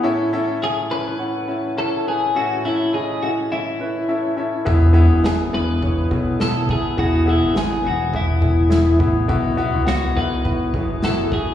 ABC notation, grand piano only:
X:1
M:4/4
L:1/8
Q:"Swing 16ths" 1/4=104
K:Alyd
V:1 name="Grand piano"
[CEAe] [CEAe] [CEAe] [CEAe] [CEAf] [CEAe] [CEAe] [CEAB] | [CEAe] [CEAe] [CEAd] [CEAe] [CEAe] [CEAB] [CEAe] [CEAe] | [B,EGe] [B,EGe] [B,Ee] [B,EGe] [B,EGc] [B,EGe] [B,EGe] [B,EGe] | [B,EGe] [B,EGe] [B,EGe] [B,EGe] [B,EGe] [B,EGe] [B,EGe] [B,EGe] |
[B,EFe] [B,EFe] [B,EFe] [B,EFe] [B,EFe] [B,EFG] [B,EFe] [B,EFe] |]
V:2 name="Grand piano" clef=bass
A,,3 z4 z | A,,3 z4 z | E,3 z4 z | E,3 z4 z |
B,,3 z4 z |]